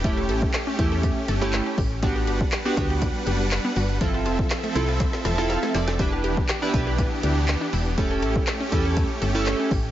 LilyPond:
<<
  \new Staff \with { instrumentName = "Synth arpeggio sound" } { \time 4/4 \key a \mixolydian \tempo 4 = 121 a16 a'16 a'16 r16 a'16 cis'16 r16 a'16 a16 r16 a'16 r8 cis'16 g'16 r16 | g16 g'16 g'16 r16 g'16 b16 r16 g'16 g16 r16 g'16 r8 b16 fis'16 r16 | f16 f'16 f'16 r16 f'16 a16 r16 f'16 f16 r16 f'16 r8 a16 e'16 r16 | g16 g'16 g'16 r16 g'16 d'16 r16 g'16 g16 r16 g'16 r8 d'16 e'16 r16 |
a16 a'16 a'16 r16 a'16 cis'16 r16 a'16 a16 r16 a'16 r8 cis'16 g'16 r16 | }
  \new Staff \with { instrumentName = "Synth keys" } { \time 4/4 \key a \mixolydian << { r1 | r1 | r2 r8 a''8 f''8 d''8 | r1 |
r1 | } \\ { <a cis' e' g'>4 r8 <a cis' e' g'>8. r8 <a cis' e' g'>8. r8 | <b d' fis' g'>8. r8 <b d' fis' g'>16 <b d' fis' g'>4~ <b d' fis' g'>16 r4 r16 | <c' e' f' a'>4 r8 <c' e' f' a'>8. r8 <c' e' f' a'>8. r8 | <d' e' g' b'>8. r8 <d' e' g' b'>16 <d' e' g' b'>4~ <d' e' g' b'>16 r4 r16 |
<cis' e' g' a'>4 r8 <cis' e' g' a'>8. r8 <cis' e' g' a'>8. r8 | } >> }
  \new Staff \with { instrumentName = "Supersaw synth" } { \time 4/4 \key a \mixolydian <a cis' g'>1 | <g d' b' fis''>1 | <f c' a' e''>1 | <e b d' g'>1 |
<a cis' g'>1 | }
  \new Staff \with { instrumentName = "FM bass" } { \clef bass \time 4/4 \key a \mixolydian e,,8 a,,8 r8 e,4 g,,4 a,,8~ | a,,8 g,,8 r8 d,4 fis,,4 g,,8~ | g,,8 f,,8 r8 c,4 e,,4 f,,8~ | f,,8 e,,8 r8 b,,4 d,4 e,,8~ |
e,,8 a,,8 r8 e,4 g,,4 a,,8 | }
  \new DrumStaff \with { instrumentName = "Drums" } \drummode { \time 4/4 <hh bd>8 hh16 bd16 <hc hh sn>8 <hh bd>8 <hh bd>8 hh8 <hc hh sn>8 <hho bd>8 | <hh bd>8 hh16 bd16 <hc hh sn>8 <hh bd>8 <hh bd>8 hh8 <hc hh sn>8 hho8 | <hh bd>8 hh16 bd16 <hc hh sn>16 hh16 hh8 <hh bd sn>16 sn16 <hh sn>16 sn16 <hh sn>16 <hh sn>16 <hho sn>16 sn16 | <hh bd>8 hh16 bd16 <hc hh sn>8 <hh bd>8 <hh bd>8 hh8 <hc hh sn>8 hho8 |
<hh bd>8 hh16 bd16 <hc hh sn>8 <hh bd>8 <hh bd>8 hh8 <hc hh sn>8 <hho bd>8 | }
>>